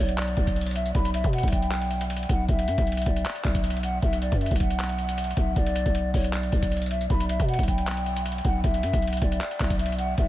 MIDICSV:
0, 0, Header, 1, 4, 480
1, 0, Start_track
1, 0, Key_signature, 2, "minor"
1, 0, Tempo, 384615
1, 1182, Time_signature, 4, 2, 24, 8
1, 12832, End_track
2, 0, Start_track
2, 0, Title_t, "Flute"
2, 0, Program_c, 0, 73
2, 0, Note_on_c, 0, 73, 87
2, 173, Note_off_c, 0, 73, 0
2, 223, Note_on_c, 0, 74, 90
2, 899, Note_off_c, 0, 74, 0
2, 941, Note_on_c, 0, 76, 80
2, 1131, Note_off_c, 0, 76, 0
2, 1181, Note_on_c, 0, 83, 90
2, 1371, Note_off_c, 0, 83, 0
2, 1421, Note_on_c, 0, 76, 88
2, 1611, Note_off_c, 0, 76, 0
2, 1662, Note_on_c, 0, 78, 90
2, 1852, Note_off_c, 0, 78, 0
2, 1901, Note_on_c, 0, 79, 89
2, 2553, Note_off_c, 0, 79, 0
2, 2862, Note_on_c, 0, 78, 83
2, 3052, Note_off_c, 0, 78, 0
2, 3103, Note_on_c, 0, 76, 104
2, 3779, Note_off_c, 0, 76, 0
2, 3822, Note_on_c, 0, 74, 71
2, 4499, Note_off_c, 0, 74, 0
2, 4542, Note_on_c, 0, 76, 78
2, 4732, Note_off_c, 0, 76, 0
2, 4783, Note_on_c, 0, 78, 82
2, 4972, Note_off_c, 0, 78, 0
2, 5023, Note_on_c, 0, 76, 89
2, 5213, Note_off_c, 0, 76, 0
2, 5264, Note_on_c, 0, 74, 90
2, 5453, Note_off_c, 0, 74, 0
2, 5505, Note_on_c, 0, 76, 91
2, 5694, Note_off_c, 0, 76, 0
2, 5744, Note_on_c, 0, 78, 80
2, 6653, Note_off_c, 0, 78, 0
2, 6701, Note_on_c, 0, 76, 80
2, 6891, Note_off_c, 0, 76, 0
2, 6942, Note_on_c, 0, 74, 108
2, 7619, Note_off_c, 0, 74, 0
2, 7663, Note_on_c, 0, 73, 87
2, 7852, Note_off_c, 0, 73, 0
2, 7901, Note_on_c, 0, 74, 93
2, 8578, Note_off_c, 0, 74, 0
2, 8620, Note_on_c, 0, 76, 78
2, 8811, Note_off_c, 0, 76, 0
2, 8861, Note_on_c, 0, 83, 89
2, 9051, Note_off_c, 0, 83, 0
2, 9100, Note_on_c, 0, 76, 87
2, 9291, Note_off_c, 0, 76, 0
2, 9342, Note_on_c, 0, 78, 88
2, 9532, Note_off_c, 0, 78, 0
2, 9581, Note_on_c, 0, 79, 86
2, 10267, Note_off_c, 0, 79, 0
2, 10543, Note_on_c, 0, 78, 88
2, 10732, Note_off_c, 0, 78, 0
2, 10782, Note_on_c, 0, 76, 105
2, 11459, Note_off_c, 0, 76, 0
2, 11503, Note_on_c, 0, 74, 72
2, 12179, Note_off_c, 0, 74, 0
2, 12223, Note_on_c, 0, 76, 84
2, 12412, Note_off_c, 0, 76, 0
2, 12462, Note_on_c, 0, 78, 81
2, 12652, Note_off_c, 0, 78, 0
2, 12703, Note_on_c, 0, 76, 87
2, 12832, Note_off_c, 0, 76, 0
2, 12832, End_track
3, 0, Start_track
3, 0, Title_t, "808-style bass"
3, 0, Program_c, 1, 38
3, 0, Note_on_c, 1, 35, 104
3, 443, Note_off_c, 1, 35, 0
3, 462, Note_on_c, 1, 35, 103
3, 1153, Note_off_c, 1, 35, 0
3, 1182, Note_on_c, 1, 35, 114
3, 1534, Note_off_c, 1, 35, 0
3, 1549, Note_on_c, 1, 47, 101
3, 1780, Note_off_c, 1, 47, 0
3, 1789, Note_on_c, 1, 35, 102
3, 2819, Note_off_c, 1, 35, 0
3, 2861, Note_on_c, 1, 35, 110
3, 3092, Note_off_c, 1, 35, 0
3, 3101, Note_on_c, 1, 35, 106
3, 3342, Note_on_c, 1, 42, 97
3, 3360, Note_off_c, 1, 35, 0
3, 3463, Note_off_c, 1, 42, 0
3, 3469, Note_on_c, 1, 35, 104
3, 3808, Note_off_c, 1, 35, 0
3, 3821, Note_on_c, 1, 35, 105
3, 4052, Note_off_c, 1, 35, 0
3, 4302, Note_on_c, 1, 35, 101
3, 4993, Note_off_c, 1, 35, 0
3, 5022, Note_on_c, 1, 35, 115
3, 5375, Note_off_c, 1, 35, 0
3, 5390, Note_on_c, 1, 42, 101
3, 5620, Note_off_c, 1, 42, 0
3, 5630, Note_on_c, 1, 35, 102
3, 6659, Note_off_c, 1, 35, 0
3, 6701, Note_on_c, 1, 35, 107
3, 6932, Note_off_c, 1, 35, 0
3, 6942, Note_on_c, 1, 35, 116
3, 7294, Note_off_c, 1, 35, 0
3, 7310, Note_on_c, 1, 35, 97
3, 7648, Note_off_c, 1, 35, 0
3, 7662, Note_on_c, 1, 35, 108
3, 8123, Note_off_c, 1, 35, 0
3, 8142, Note_on_c, 1, 35, 104
3, 8833, Note_off_c, 1, 35, 0
3, 8862, Note_on_c, 1, 35, 116
3, 9214, Note_off_c, 1, 35, 0
3, 9229, Note_on_c, 1, 47, 102
3, 9459, Note_off_c, 1, 47, 0
3, 9469, Note_on_c, 1, 35, 98
3, 10499, Note_off_c, 1, 35, 0
3, 10541, Note_on_c, 1, 35, 105
3, 10772, Note_off_c, 1, 35, 0
3, 10782, Note_on_c, 1, 35, 108
3, 11022, Note_on_c, 1, 42, 100
3, 11041, Note_off_c, 1, 35, 0
3, 11143, Note_off_c, 1, 42, 0
3, 11149, Note_on_c, 1, 35, 99
3, 11488, Note_off_c, 1, 35, 0
3, 11502, Note_on_c, 1, 35, 105
3, 11732, Note_off_c, 1, 35, 0
3, 11982, Note_on_c, 1, 35, 99
3, 12673, Note_off_c, 1, 35, 0
3, 12702, Note_on_c, 1, 35, 115
3, 12832, Note_off_c, 1, 35, 0
3, 12832, End_track
4, 0, Start_track
4, 0, Title_t, "Drums"
4, 108, Note_on_c, 9, 42, 52
4, 222, Note_off_c, 9, 42, 0
4, 222, Note_on_c, 9, 39, 101
4, 222, Note_on_c, 9, 42, 88
4, 346, Note_off_c, 9, 42, 0
4, 347, Note_off_c, 9, 39, 0
4, 347, Note_on_c, 9, 42, 52
4, 459, Note_off_c, 9, 42, 0
4, 459, Note_on_c, 9, 42, 48
4, 462, Note_on_c, 9, 36, 91
4, 584, Note_off_c, 9, 42, 0
4, 587, Note_off_c, 9, 36, 0
4, 588, Note_on_c, 9, 36, 91
4, 588, Note_on_c, 9, 42, 87
4, 702, Note_off_c, 9, 42, 0
4, 702, Note_on_c, 9, 42, 47
4, 713, Note_off_c, 9, 36, 0
4, 765, Note_off_c, 9, 42, 0
4, 765, Note_on_c, 9, 42, 61
4, 829, Note_off_c, 9, 42, 0
4, 829, Note_on_c, 9, 42, 69
4, 885, Note_off_c, 9, 42, 0
4, 885, Note_on_c, 9, 42, 79
4, 942, Note_off_c, 9, 42, 0
4, 942, Note_on_c, 9, 42, 67
4, 1067, Note_off_c, 9, 42, 0
4, 1069, Note_on_c, 9, 42, 67
4, 1182, Note_off_c, 9, 42, 0
4, 1182, Note_on_c, 9, 36, 114
4, 1182, Note_on_c, 9, 42, 74
4, 1307, Note_off_c, 9, 36, 0
4, 1307, Note_off_c, 9, 42, 0
4, 1310, Note_on_c, 9, 42, 60
4, 1423, Note_off_c, 9, 42, 0
4, 1423, Note_on_c, 9, 42, 84
4, 1548, Note_off_c, 9, 42, 0
4, 1549, Note_on_c, 9, 36, 89
4, 1550, Note_on_c, 9, 42, 63
4, 1662, Note_off_c, 9, 42, 0
4, 1662, Note_on_c, 9, 42, 44
4, 1674, Note_off_c, 9, 36, 0
4, 1725, Note_off_c, 9, 42, 0
4, 1725, Note_on_c, 9, 42, 52
4, 1789, Note_off_c, 9, 42, 0
4, 1789, Note_on_c, 9, 36, 92
4, 1789, Note_on_c, 9, 42, 59
4, 1845, Note_off_c, 9, 42, 0
4, 1845, Note_on_c, 9, 42, 68
4, 1901, Note_off_c, 9, 36, 0
4, 1901, Note_on_c, 9, 36, 96
4, 1902, Note_off_c, 9, 42, 0
4, 1902, Note_on_c, 9, 42, 72
4, 2026, Note_off_c, 9, 36, 0
4, 2027, Note_off_c, 9, 42, 0
4, 2028, Note_on_c, 9, 42, 52
4, 2141, Note_off_c, 9, 42, 0
4, 2141, Note_on_c, 9, 42, 85
4, 2142, Note_on_c, 9, 39, 101
4, 2266, Note_off_c, 9, 42, 0
4, 2267, Note_off_c, 9, 39, 0
4, 2267, Note_on_c, 9, 42, 52
4, 2378, Note_off_c, 9, 42, 0
4, 2378, Note_on_c, 9, 42, 50
4, 2503, Note_off_c, 9, 42, 0
4, 2507, Note_on_c, 9, 42, 86
4, 2621, Note_off_c, 9, 42, 0
4, 2621, Note_on_c, 9, 42, 82
4, 2701, Note_off_c, 9, 42, 0
4, 2701, Note_on_c, 9, 42, 64
4, 2781, Note_off_c, 9, 42, 0
4, 2781, Note_on_c, 9, 42, 46
4, 2860, Note_off_c, 9, 42, 0
4, 2860, Note_on_c, 9, 42, 81
4, 2861, Note_on_c, 9, 36, 102
4, 2985, Note_off_c, 9, 36, 0
4, 2985, Note_off_c, 9, 42, 0
4, 3101, Note_on_c, 9, 36, 116
4, 3101, Note_on_c, 9, 42, 73
4, 3226, Note_off_c, 9, 36, 0
4, 3226, Note_off_c, 9, 42, 0
4, 3229, Note_on_c, 9, 42, 59
4, 3341, Note_off_c, 9, 42, 0
4, 3341, Note_on_c, 9, 42, 84
4, 3466, Note_off_c, 9, 42, 0
4, 3468, Note_on_c, 9, 42, 60
4, 3469, Note_on_c, 9, 36, 94
4, 3581, Note_off_c, 9, 42, 0
4, 3581, Note_on_c, 9, 42, 43
4, 3593, Note_off_c, 9, 36, 0
4, 3644, Note_off_c, 9, 42, 0
4, 3644, Note_on_c, 9, 42, 54
4, 3709, Note_off_c, 9, 42, 0
4, 3709, Note_on_c, 9, 42, 62
4, 3765, Note_off_c, 9, 42, 0
4, 3765, Note_on_c, 9, 42, 67
4, 3821, Note_on_c, 9, 36, 93
4, 3822, Note_off_c, 9, 42, 0
4, 3822, Note_on_c, 9, 42, 71
4, 3946, Note_off_c, 9, 36, 0
4, 3947, Note_off_c, 9, 42, 0
4, 3948, Note_on_c, 9, 42, 54
4, 4061, Note_off_c, 9, 42, 0
4, 4061, Note_on_c, 9, 42, 87
4, 4062, Note_on_c, 9, 39, 105
4, 4186, Note_off_c, 9, 42, 0
4, 4187, Note_off_c, 9, 39, 0
4, 4188, Note_on_c, 9, 42, 53
4, 4299, Note_off_c, 9, 42, 0
4, 4299, Note_on_c, 9, 42, 51
4, 4301, Note_on_c, 9, 39, 97
4, 4302, Note_on_c, 9, 36, 92
4, 4424, Note_off_c, 9, 42, 0
4, 4426, Note_off_c, 9, 39, 0
4, 4427, Note_off_c, 9, 36, 0
4, 4428, Note_on_c, 9, 36, 96
4, 4428, Note_on_c, 9, 42, 86
4, 4541, Note_off_c, 9, 42, 0
4, 4541, Note_on_c, 9, 42, 82
4, 4553, Note_off_c, 9, 36, 0
4, 4621, Note_off_c, 9, 42, 0
4, 4621, Note_on_c, 9, 42, 62
4, 4702, Note_off_c, 9, 42, 0
4, 4702, Note_on_c, 9, 42, 44
4, 4781, Note_off_c, 9, 42, 0
4, 4781, Note_on_c, 9, 42, 78
4, 4906, Note_off_c, 9, 42, 0
4, 5022, Note_on_c, 9, 36, 114
4, 5022, Note_on_c, 9, 42, 74
4, 5147, Note_off_c, 9, 36, 0
4, 5147, Note_off_c, 9, 42, 0
4, 5151, Note_on_c, 9, 42, 60
4, 5263, Note_off_c, 9, 42, 0
4, 5263, Note_on_c, 9, 42, 84
4, 5388, Note_off_c, 9, 42, 0
4, 5390, Note_on_c, 9, 36, 94
4, 5390, Note_on_c, 9, 42, 61
4, 5503, Note_off_c, 9, 42, 0
4, 5503, Note_on_c, 9, 42, 44
4, 5514, Note_off_c, 9, 36, 0
4, 5566, Note_off_c, 9, 42, 0
4, 5566, Note_on_c, 9, 42, 53
4, 5629, Note_off_c, 9, 42, 0
4, 5629, Note_on_c, 9, 42, 61
4, 5630, Note_on_c, 9, 36, 93
4, 5686, Note_off_c, 9, 42, 0
4, 5686, Note_on_c, 9, 42, 71
4, 5742, Note_off_c, 9, 36, 0
4, 5742, Note_on_c, 9, 36, 94
4, 5743, Note_off_c, 9, 42, 0
4, 5743, Note_on_c, 9, 42, 70
4, 5867, Note_off_c, 9, 36, 0
4, 5868, Note_off_c, 9, 42, 0
4, 5869, Note_on_c, 9, 42, 54
4, 5983, Note_off_c, 9, 42, 0
4, 5983, Note_on_c, 9, 39, 105
4, 5983, Note_on_c, 9, 42, 89
4, 6107, Note_off_c, 9, 42, 0
4, 6108, Note_off_c, 9, 39, 0
4, 6108, Note_on_c, 9, 42, 52
4, 6220, Note_off_c, 9, 42, 0
4, 6220, Note_on_c, 9, 42, 49
4, 6344, Note_off_c, 9, 42, 0
4, 6349, Note_on_c, 9, 42, 88
4, 6462, Note_off_c, 9, 42, 0
4, 6462, Note_on_c, 9, 42, 80
4, 6542, Note_off_c, 9, 42, 0
4, 6542, Note_on_c, 9, 42, 64
4, 6621, Note_off_c, 9, 42, 0
4, 6621, Note_on_c, 9, 42, 45
4, 6701, Note_off_c, 9, 42, 0
4, 6701, Note_on_c, 9, 36, 103
4, 6701, Note_on_c, 9, 42, 78
4, 6826, Note_off_c, 9, 36, 0
4, 6826, Note_off_c, 9, 42, 0
4, 6941, Note_on_c, 9, 42, 73
4, 6942, Note_on_c, 9, 36, 116
4, 7066, Note_off_c, 9, 42, 0
4, 7067, Note_off_c, 9, 36, 0
4, 7070, Note_on_c, 9, 42, 62
4, 7183, Note_off_c, 9, 42, 0
4, 7183, Note_on_c, 9, 42, 83
4, 7308, Note_off_c, 9, 42, 0
4, 7309, Note_on_c, 9, 36, 93
4, 7310, Note_on_c, 9, 42, 62
4, 7422, Note_off_c, 9, 42, 0
4, 7422, Note_on_c, 9, 42, 73
4, 7434, Note_off_c, 9, 36, 0
4, 7547, Note_off_c, 9, 42, 0
4, 7662, Note_on_c, 9, 36, 94
4, 7663, Note_on_c, 9, 46, 73
4, 7787, Note_off_c, 9, 36, 0
4, 7788, Note_off_c, 9, 46, 0
4, 7789, Note_on_c, 9, 42, 54
4, 7902, Note_off_c, 9, 42, 0
4, 7902, Note_on_c, 9, 42, 85
4, 7903, Note_on_c, 9, 39, 104
4, 8027, Note_off_c, 9, 42, 0
4, 8027, Note_on_c, 9, 42, 51
4, 8028, Note_off_c, 9, 39, 0
4, 8139, Note_off_c, 9, 42, 0
4, 8139, Note_on_c, 9, 42, 49
4, 8142, Note_on_c, 9, 36, 92
4, 8264, Note_off_c, 9, 42, 0
4, 8267, Note_off_c, 9, 36, 0
4, 8268, Note_on_c, 9, 36, 90
4, 8268, Note_on_c, 9, 42, 87
4, 8382, Note_off_c, 9, 42, 0
4, 8382, Note_on_c, 9, 42, 49
4, 8393, Note_off_c, 9, 36, 0
4, 8445, Note_off_c, 9, 42, 0
4, 8445, Note_on_c, 9, 42, 61
4, 8508, Note_off_c, 9, 42, 0
4, 8508, Note_on_c, 9, 42, 67
4, 8565, Note_off_c, 9, 42, 0
4, 8565, Note_on_c, 9, 42, 77
4, 8622, Note_off_c, 9, 42, 0
4, 8622, Note_on_c, 9, 42, 68
4, 8747, Note_off_c, 9, 42, 0
4, 8749, Note_on_c, 9, 42, 71
4, 8862, Note_off_c, 9, 42, 0
4, 8862, Note_on_c, 9, 36, 116
4, 8862, Note_on_c, 9, 42, 70
4, 8986, Note_off_c, 9, 36, 0
4, 8987, Note_off_c, 9, 42, 0
4, 8990, Note_on_c, 9, 42, 63
4, 9103, Note_off_c, 9, 42, 0
4, 9103, Note_on_c, 9, 42, 88
4, 9228, Note_off_c, 9, 42, 0
4, 9229, Note_on_c, 9, 36, 92
4, 9229, Note_on_c, 9, 42, 62
4, 9342, Note_off_c, 9, 42, 0
4, 9342, Note_on_c, 9, 42, 44
4, 9354, Note_off_c, 9, 36, 0
4, 9405, Note_off_c, 9, 42, 0
4, 9405, Note_on_c, 9, 42, 52
4, 9468, Note_off_c, 9, 42, 0
4, 9468, Note_on_c, 9, 42, 61
4, 9469, Note_on_c, 9, 36, 96
4, 9525, Note_off_c, 9, 42, 0
4, 9525, Note_on_c, 9, 42, 68
4, 9582, Note_off_c, 9, 36, 0
4, 9582, Note_on_c, 9, 36, 97
4, 9583, Note_off_c, 9, 42, 0
4, 9583, Note_on_c, 9, 42, 74
4, 9706, Note_off_c, 9, 36, 0
4, 9707, Note_off_c, 9, 42, 0
4, 9708, Note_on_c, 9, 42, 52
4, 9822, Note_off_c, 9, 42, 0
4, 9822, Note_on_c, 9, 39, 106
4, 9822, Note_on_c, 9, 42, 86
4, 9946, Note_off_c, 9, 42, 0
4, 9947, Note_off_c, 9, 39, 0
4, 9948, Note_on_c, 9, 42, 54
4, 10059, Note_off_c, 9, 42, 0
4, 10059, Note_on_c, 9, 42, 49
4, 10184, Note_off_c, 9, 42, 0
4, 10189, Note_on_c, 9, 42, 88
4, 10302, Note_off_c, 9, 42, 0
4, 10302, Note_on_c, 9, 42, 81
4, 10382, Note_off_c, 9, 42, 0
4, 10382, Note_on_c, 9, 42, 66
4, 10462, Note_off_c, 9, 42, 0
4, 10462, Note_on_c, 9, 42, 47
4, 10541, Note_off_c, 9, 42, 0
4, 10541, Note_on_c, 9, 36, 104
4, 10541, Note_on_c, 9, 42, 79
4, 10666, Note_off_c, 9, 36, 0
4, 10666, Note_off_c, 9, 42, 0
4, 10782, Note_on_c, 9, 36, 116
4, 10782, Note_on_c, 9, 42, 73
4, 10907, Note_off_c, 9, 36, 0
4, 10907, Note_off_c, 9, 42, 0
4, 10910, Note_on_c, 9, 42, 62
4, 11023, Note_off_c, 9, 42, 0
4, 11023, Note_on_c, 9, 42, 84
4, 11148, Note_off_c, 9, 42, 0
4, 11149, Note_on_c, 9, 36, 94
4, 11150, Note_on_c, 9, 42, 63
4, 11262, Note_off_c, 9, 42, 0
4, 11262, Note_on_c, 9, 42, 43
4, 11274, Note_off_c, 9, 36, 0
4, 11326, Note_off_c, 9, 42, 0
4, 11326, Note_on_c, 9, 42, 53
4, 11389, Note_off_c, 9, 42, 0
4, 11389, Note_on_c, 9, 42, 61
4, 11445, Note_off_c, 9, 42, 0
4, 11445, Note_on_c, 9, 42, 69
4, 11502, Note_on_c, 9, 36, 92
4, 11503, Note_off_c, 9, 42, 0
4, 11503, Note_on_c, 9, 42, 70
4, 11627, Note_off_c, 9, 36, 0
4, 11628, Note_off_c, 9, 42, 0
4, 11629, Note_on_c, 9, 42, 54
4, 11743, Note_off_c, 9, 42, 0
4, 11743, Note_on_c, 9, 39, 108
4, 11743, Note_on_c, 9, 42, 86
4, 11867, Note_off_c, 9, 42, 0
4, 11867, Note_on_c, 9, 42, 53
4, 11868, Note_off_c, 9, 39, 0
4, 11979, Note_off_c, 9, 42, 0
4, 11979, Note_on_c, 9, 42, 50
4, 11982, Note_on_c, 9, 36, 92
4, 11982, Note_on_c, 9, 39, 101
4, 12104, Note_off_c, 9, 42, 0
4, 12107, Note_off_c, 9, 36, 0
4, 12107, Note_off_c, 9, 39, 0
4, 12108, Note_on_c, 9, 42, 85
4, 12109, Note_on_c, 9, 36, 94
4, 12222, Note_off_c, 9, 42, 0
4, 12222, Note_on_c, 9, 42, 81
4, 12233, Note_off_c, 9, 36, 0
4, 12302, Note_off_c, 9, 42, 0
4, 12302, Note_on_c, 9, 42, 62
4, 12381, Note_off_c, 9, 42, 0
4, 12381, Note_on_c, 9, 42, 46
4, 12461, Note_off_c, 9, 42, 0
4, 12461, Note_on_c, 9, 42, 78
4, 12586, Note_off_c, 9, 42, 0
4, 12702, Note_on_c, 9, 36, 114
4, 12702, Note_on_c, 9, 42, 73
4, 12826, Note_off_c, 9, 42, 0
4, 12827, Note_off_c, 9, 36, 0
4, 12832, End_track
0, 0, End_of_file